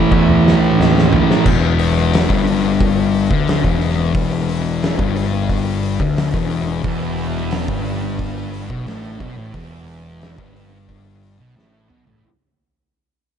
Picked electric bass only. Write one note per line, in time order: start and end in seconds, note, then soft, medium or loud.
0.12 0.53 E2 loud
0.79 1.20 D#2 loud
1.46 2.26 E1 medium
2.30 3.27 G1 loud
3.31 3.62 D2 loud
3.65 4.12 E1 loud
4.15 4.95 E1 medium
5.00 5.96 G1 medium
6.01 6.32 D2 loud
6.34 6.81 E1 medium
6.85 7.65 E1 medium
7.68 8.66 G1 medium
8.70 8.86 B1 loud
8.88 9.19 A1 medium
9.21 9.36 B1 medium
9.39 9.54 A1 loud
9.54 10.34 E1 medium
10.39 11.36 G1 medium
11.40 11.55 B1 medium
11.58 11.88 A1 loud
11.91 12.06 B1 medium
12.08 12.23 A1 loud